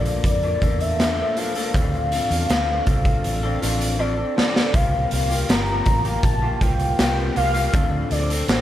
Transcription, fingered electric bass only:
Already playing: A#1
0.24 F2
0.62 E2
1.74 D2
2.31 E2
2.50 D2
2.87 C2
3.25 A1
3.63 A1
4.74 C2
5.12 C2
5.50 G1
5.87 A1
6.24 A#1
6.61 C2
6.99 C2
7.37 C2
7.74 D2
8.11 D2
8.48 A1

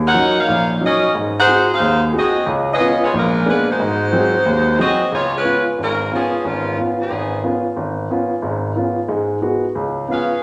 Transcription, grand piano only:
Already playing: D#2
0.14 F#3 C#4 D#4
0.48 A#1
0.81 F#3 C#4 D#4
1.15 G#2
1.47 G#3 C4 F#4
1.80 D#2
2.13 G#3 C4 F#4
2.46 C#2
2.80 B3 C#4 F4
3.13 A#1
3.45 G#3 A#3 B3 D4
3.80 G#2
4.12 F#3 G#3 C4
4.46 D#2
4.78 F#3 G#3 C4
5.12 C#2
5.44 B3 C#4 F4
5.78 G#1
6.11 B3 C#4 F4
6.45 G#1
6.77 B3 C#4 F4
7.10 G#1
7.43 B3 C#4 F4
7.76 G#1
8.11 B3 C#4 F4
8.42 G#1 G#2
8.76 B3 C#4 F4
9.08 G#2 G#3
9.42 G#3 B3 F#4
9.75 C#2
10.09 B3 C#4 F4

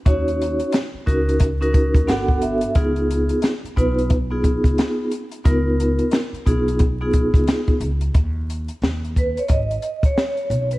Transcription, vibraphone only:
0.05 C#4 D#4 F#4 C#5
1.06 C#4 D#4 F#4 A#4
1.61 C#4 D#4 F#4 A#4
2.07 B3 D4 F#4 A4 F#5
2.42 E5
2.75 B3 D#4 F4 G#4
3.76 B3 D#4 F4 B4
4.30 B3 D#4 F4 G#4
5.44 B3 D#4 F4 A#4
6.46 B3 D#4 F4 G#4
7.01 B3 D#4 F4 G#4
9.18 B4
9.39 C#5
9.51 D#5
10.06 C#5
10.73 B4

